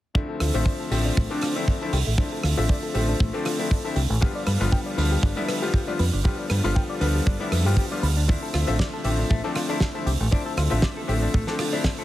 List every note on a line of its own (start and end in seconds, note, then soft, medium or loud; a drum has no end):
0.15 0.51 D3 medium
0.15 0.51 F3 medium
0.15 0.51 A3 medium
0.15 0.51 C4 medium
0.15 0.25 D4 medium
0.15 0.51 E4 medium
0.15 kick loud
0.29 0.35 A4 medium
0.40 0.50 D2 medium
0.40 0.45 F4 medium
0.40 cross-stick medium
0.40 open hi-hat medium
0.54 0.62 A1 medium
0.54 0.88 D3 medium
0.54 0.89 F3 medium
0.54 0.89 A3 medium
0.54 0.89 C4 medium
0.54 0.60 F4 medium
0.54 0.89 E5 medium
0.66 0.73 D5 medium
0.66 kick medium
0.80 0.83 A4 medium
0.91 1.09 A1 medium
0.91 1.27 D3 medium
0.91 1.27 F3 medium
0.91 1.27 A3 medium
0.91 1.27 C4 medium
0.91 0.95 G4 medium
0.91 1.28 E5 medium
0.91 open hi-hat loud
1.05 1.11 D4 medium
1.17 1.26 A1 medium
1.17 1.27 A3 medium
1.17 kick loud
1.30 1.52 D3 medium
1.30 1.53 F3 medium
1.30 1.53 A3 medium
1.30 1.53 C4 medium
1.30 1.53 D4 loud
1.30 1.36 A4 medium
1.41 1.46 F4 medium
1.41 cross-stick medium
1.41 open hi-hat loud
1.55 1.78 D3 medium
1.55 1.78 F3 medium
1.55 1.78 A3 medium
1.55 1.78 C4 medium
1.55 1.65 D4 medium
1.55 1.78 E4 medium
1.68 kick medium
1.81 1.94 D3 medium
1.81 1.94 F3 medium
1.81 1.94 A3 medium
1.81 1.94 C4 medium
1.81 1.94 E4 medium
1.81 1.85 A4 medium
1.93 2.02 C2 loud
1.93 1.97 G4 medium
1.93 open hi-hat loud
2.07 2.14 A1 medium
2.07 2.13 A3 medium
2.18 2.54 D3 medium
2.18 2.54 F3 medium
2.18 2.55 A3 medium
2.18 2.55 C4 medium
2.18 2.29 D4 medium
2.18 2.55 E4 medium
2.18 kick loud
2.32 2.38 A4 medium
2.43 2.53 D2 medium
2.43 2.48 F4 medium
2.43 cross-stick medium
2.43 open hi-hat loud
2.57 2.65 A1 medium
2.57 2.92 D3 medium
2.57 2.92 F3 medium
2.57 2.92 A3 medium
2.57 2.92 C4 medium
2.57 2.63 F4 medium
2.57 2.92 E5 loud
2.69 2.76 D5 medium
2.69 kick loud
2.83 2.86 A4 medium
2.94 3.13 A1 medium
2.94 3.30 D3 medium
2.94 3.30 F3 medium
2.94 3.31 A3 medium
2.94 3.31 C4 medium
2.94 2.99 G4 medium
2.94 3.31 E5 medium
2.94 open hi-hat medium
3.08 3.14 D4 medium
3.20 3.29 A1 medium
3.20 3.30 A3 medium
3.20 kick loud
3.33 3.56 D3 medium
3.33 3.56 F3 medium
3.33 3.56 A3 medium
3.33 3.56 C4 medium
3.33 3.56 D4 medium
3.33 3.40 A4 medium
3.45 3.50 F4 medium
3.45 cross-stick medium
3.45 open hi-hat loud
3.59 3.81 D3 medium
3.59 3.81 F3 medium
3.59 3.81 A3 medium
3.59 3.81 C4 medium
3.59 3.68 D4 medium
3.59 3.82 E4 medium
3.70 3.78 D4 medium
3.70 kick loud
3.70 open hi-hat medium
3.84 3.97 D3 medium
3.84 3.97 F3 medium
3.84 3.97 A3 medium
3.84 3.97 C4 medium
3.84 3.97 E4 medium
3.84 3.88 A4 medium
3.96 4.05 C2 medium
3.96 4.00 G4 medium
3.96 open hi-hat medium
4.10 4.18 A1 medium
4.10 4.16 A3 medium
4.21 4.57 D3 medium
4.21 4.57 F3 medium
4.21 4.57 G3 medium
4.21 4.57 B3 medium
4.21 4.58 F4 medium
4.21 4.32 G4 medium
4.21 kick loud
4.35 4.41 D5 medium
4.46 4.56 G2 medium
4.46 4.51 B4 medium
4.46 cross-stick medium
4.46 open hi-hat loud
4.60 4.69 G1 medium
4.60 4.95 D3 medium
4.60 4.95 F3 medium
4.60 4.95 G3 medium
4.60 4.95 B3 medium
4.60 4.95 F4 medium
4.60 4.67 B4 medium
4.72 4.79 G5 medium
4.72 kick medium
4.86 4.90 D5 medium
4.97 5.16 D2 medium
4.97 5.33 D3 medium
4.97 5.34 F3 medium
4.97 5.34 G3 medium
4.97 5.34 B3 medium
4.97 5.34 F4 medium
4.97 5.02 B4 medium
4.97 open hi-hat loud
5.12 5.18 G4 medium
5.23 5.32 G1 medium
5.23 5.34 D4 medium
5.23 kick loud
5.36 5.59 D3 medium
5.36 5.59 F3 medium
5.36 5.59 G3 medium
5.36 5.59 B3 medium
5.36 5.59 E4 loud
5.36 5.43 D5 medium
5.48 5.53 B4 medium
5.48 cross-stick medium
5.48 open hi-hat loud
5.62 5.84 D3 medium
5.62 5.84 F3 medium
5.62 5.85 G3 medium
5.62 5.85 B3 medium
5.62 5.85 F4 medium
5.62 5.71 G4 medium
5.74 5.81 G4 medium
5.74 kick medium
5.87 6.00 D3 medium
5.87 6.00 F3 medium
5.87 6.00 G3 medium
5.87 6.00 B3 medium
5.87 6.00 F4 medium
5.87 5.91 D5 medium
5.99 6.09 F2 medium
5.99 6.04 B4 medium
5.99 open hi-hat loud
6.13 6.21 G1 medium
6.13 6.19 D4 medium
6.24 6.61 D3 medium
6.24 6.61 F3 medium
6.24 6.61 G3 medium
6.24 6.61 B3 medium
6.24 6.61 F4 medium
6.24 6.35 G4 medium
6.24 kick loud
6.39 6.45 D5 medium
6.50 6.60 G2 medium
6.50 6.55 B4 medium
6.50 cross-stick medium
6.50 open hi-hat loud
6.64 6.72 G1 medium
6.64 6.98 D3 medium
6.64 6.98 F3 medium
6.64 6.99 G3 medium
6.64 6.99 B3 medium
6.64 6.99 F4 loud
6.64 6.70 B4 medium
6.75 6.83 G5 medium
6.75 kick loud
6.89 6.93 D5 medium
7.00 7.19 D2 medium
7.00 7.37 D3 medium
7.00 7.37 F3 medium
7.00 7.37 G3 medium
7.00 7.37 B3 medium
7.00 7.37 F4 medium
7.00 7.05 B4 medium
7.00 open hi-hat loud
7.15 7.21 G4 medium
7.26 7.36 G1 medium
7.26 7.37 D4 loud
7.26 kick loud
7.40 7.62 D3 medium
7.40 7.62 F3 medium
7.40 7.63 G3 medium
7.40 7.63 B3 medium
7.40 7.63 E4 medium
7.40 7.46 D5 medium
7.52 7.66 F2 medium
7.52 7.56 B4 medium
7.52 cross-stick medium
7.52 open hi-hat loud
7.65 7.74 G2 medium
7.65 7.88 D3 medium
7.65 7.88 F3 medium
7.65 7.88 G3 medium
7.65 7.88 B3 medium
7.65 7.88 F4 medium
7.65 7.75 G4 medium
7.77 7.85 G4 medium
7.77 kick medium
7.77 open hi-hat medium
7.91 8.04 D3 medium
7.91 8.04 F3 medium
7.91 8.04 G3 medium
7.91 8.04 B3 medium
7.91 8.04 F4 medium
7.91 7.95 D5 medium
8.03 8.35 D2 medium
8.03 8.07 B4 medium
8.03 open hi-hat loud
8.17 8.23 D4 medium
8.28 8.64 D3 medium
8.28 8.64 F3 medium
8.28 8.65 A3 medium
8.28 8.65 C4 medium
8.28 8.39 D4 medium
8.28 8.65 E4 medium
8.28 kick loud
8.42 8.48 A4 medium
8.54 8.63 D2 medium
8.54 8.58 F4 medium
8.54 cross-stick medium
8.54 open hi-hat medium
8.67 8.76 A1 medium
8.67 9.02 D3 medium
8.67 9.02 F3 medium
8.67 9.02 A3 medium
8.67 9.02 C4 medium
8.67 8.74 F4 medium
8.67 9.02 E5 loud
8.79 8.86 D5 medium
8.79 kick medium
8.79 snare medium
8.93 8.97 A4 medium
9.04 9.22 A1 medium
9.04 9.40 D3 medium
9.04 9.40 F3 medium
9.04 9.40 A3 medium
9.04 9.41 C4 medium
9.04 9.09 G4 medium
9.04 9.41 E5 medium
9.04 open hi-hat medium
9.19 9.25 D4 medium
9.30 9.40 A1 medium
9.30 9.41 A3 loud
9.30 kick loud
9.44 9.66 D3 medium
9.44 9.66 F3 medium
9.44 9.66 A3 medium
9.44 9.66 C4 medium
9.44 9.66 D4 loud
9.44 9.50 A4 medium
9.55 9.60 F4 medium
9.55 cross-stick medium
9.55 open hi-hat medium
9.69 9.91 D3 medium
9.69 9.91 F3 medium
9.69 9.91 A3 medium
9.69 9.92 C4 medium
9.69 9.78 D4 medium
9.69 9.92 E4 medium
9.80 9.88 D4 medium
9.80 kick medium
9.80 snare medium
9.94 10.07 D3 medium
9.94 10.07 F3 medium
9.94 10.07 A3 medium
9.94 10.07 C4 medium
9.94 10.07 E4 medium
9.94 9.98 A4 medium
10.06 10.16 C2 medium
10.06 10.11 G4 medium
10.06 open hi-hat loud
10.20 10.28 A1 medium
10.20 10.26 A3 medium
10.31 10.67 D3 medium
10.31 10.68 F3 medium
10.31 10.68 A3 medium
10.31 10.68 C4 medium
10.31 10.42 D4 medium
10.31 10.68 E4 medium
10.31 kick loud
10.46 10.52 A4 medium
10.57 10.67 D2 medium
10.57 10.62 F4 medium
10.57 cross-stick medium
10.57 open hi-hat loud
10.70 10.79 A1 medium
10.70 11.05 D3 medium
10.70 11.05 F3 medium
10.70 11.05 A3 medium
10.70 11.05 C4 medium
10.70 10.77 F4 medium
10.70 11.05 E5 loud
10.82 10.90 D5 medium
10.82 kick medium
10.82 snare loud
10.97 11.00 A4 medium
11.07 11.26 A1 medium
11.07 11.44 D3 medium
11.07 11.44 F3 medium
11.07 11.44 A3 medium
11.07 11.44 C4 medium
11.07 11.12 G4 medium
11.07 11.44 E5 medium
11.07 open hi-hat medium
11.22 11.28 D4 medium
11.34 11.43 A1 loud
11.34 11.44 A3 medium
11.34 kick loud
11.47 11.69 D3 medium
11.47 11.70 F3 medium
11.47 11.70 A3 medium
11.47 11.70 C4 medium
11.47 11.70 D4 medium
11.47 11.53 A4 medium
11.47 snare soft
11.59 11.63 F4 medium
11.59 cross-stick medium
11.59 open hi-hat loud
11.73 11.95 D3 medium
11.73 11.95 F3 medium
11.73 11.95 A3 medium
11.73 11.95 C4 medium
11.73 11.81 D4 medium
11.73 11.95 E4 medium
11.84 11.91 D4 medium
11.84 kick medium
11.84 snare loud
11.84 open hi-hat medium
11.98 12.04 D3 medium
11.98 12.04 F3 medium
11.98 12.04 A3 medium
11.98 12.04 C4 medium
11.98 12.04 E4 medium
11.98 12.02 A4 medium